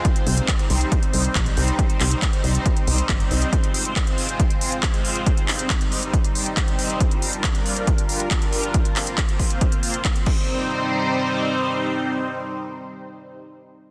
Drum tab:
CC |----------------|----------------|----------------|----------------|
HH |xxoxxxoxxxoxxxox|xxoxxxoxxxoxxxox|xxoxxxoxxxoxxxox|xxoxxxoxxxoxxxox|
CP |----x-------x---|--x-x-------x---|----x-------x---|--x-x-------x---|
BD |o---o---o---o---|o---o---o---o---|o---o---o---o---|o---o---o---o---|

CC |----------------|--------------x-|----------------|----------------|
HH |xxoxxxoxxxoxxxox|xxoxxxoxxxoxxx--|----------------|----------------|
CP |----x-------x---|--x-x-------x---|----------------|----------------|
BD |o---o---o---o---|o---o-o-o---o-o-|----------------|----------------|